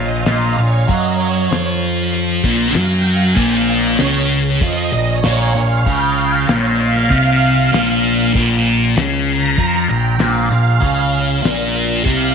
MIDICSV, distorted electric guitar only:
0, 0, Header, 1, 2, 480
1, 0, Start_track
1, 0, Key_signature, -5, "minor"
1, 0, Tempo, 620476
1, 692, Time_signature, 4, 2, 24, 8
1, 9552, End_track
2, 0, Start_track
2, 0, Title_t, "Distorted electric guitar"
2, 0, Program_c, 0, 30
2, 0, Note_on_c, 0, 46, 77
2, 159, Note_off_c, 0, 46, 0
2, 206, Note_on_c, 0, 46, 97
2, 434, Note_off_c, 0, 46, 0
2, 444, Note_on_c, 0, 46, 72
2, 640, Note_off_c, 0, 46, 0
2, 681, Note_on_c, 0, 54, 108
2, 1168, Note_off_c, 0, 54, 0
2, 1168, Note_on_c, 0, 53, 106
2, 1884, Note_off_c, 0, 53, 0
2, 1893, Note_on_c, 0, 46, 105
2, 2136, Note_off_c, 0, 46, 0
2, 2136, Note_on_c, 0, 54, 97
2, 2595, Note_off_c, 0, 54, 0
2, 2598, Note_on_c, 0, 46, 97
2, 3079, Note_off_c, 0, 46, 0
2, 3090, Note_on_c, 0, 49, 103
2, 3565, Note_off_c, 0, 49, 0
2, 3583, Note_on_c, 0, 53, 100
2, 3808, Note_off_c, 0, 53, 0
2, 3811, Note_on_c, 0, 46, 70
2, 4005, Note_off_c, 0, 46, 0
2, 4058, Note_on_c, 0, 46, 98
2, 4283, Note_off_c, 0, 46, 0
2, 4292, Note_on_c, 0, 46, 77
2, 4486, Note_off_c, 0, 46, 0
2, 4536, Note_on_c, 0, 49, 104
2, 5009, Note_off_c, 0, 49, 0
2, 5018, Note_on_c, 0, 46, 100
2, 5490, Note_off_c, 0, 46, 0
2, 5493, Note_on_c, 0, 48, 100
2, 5968, Note_off_c, 0, 48, 0
2, 5974, Note_on_c, 0, 46, 104
2, 6440, Note_off_c, 0, 46, 0
2, 6450, Note_on_c, 0, 46, 100
2, 6926, Note_off_c, 0, 46, 0
2, 6937, Note_on_c, 0, 49, 104
2, 7409, Note_off_c, 0, 49, 0
2, 7413, Note_on_c, 0, 53, 99
2, 7647, Note_off_c, 0, 53, 0
2, 7650, Note_on_c, 0, 46, 73
2, 7845, Note_off_c, 0, 46, 0
2, 7884, Note_on_c, 0, 46, 101
2, 8116, Note_off_c, 0, 46, 0
2, 8125, Note_on_c, 0, 46, 71
2, 8322, Note_off_c, 0, 46, 0
2, 8358, Note_on_c, 0, 49, 100
2, 8835, Note_off_c, 0, 49, 0
2, 8838, Note_on_c, 0, 46, 101
2, 9315, Note_off_c, 0, 46, 0
2, 9318, Note_on_c, 0, 48, 97
2, 9552, Note_off_c, 0, 48, 0
2, 9552, End_track
0, 0, End_of_file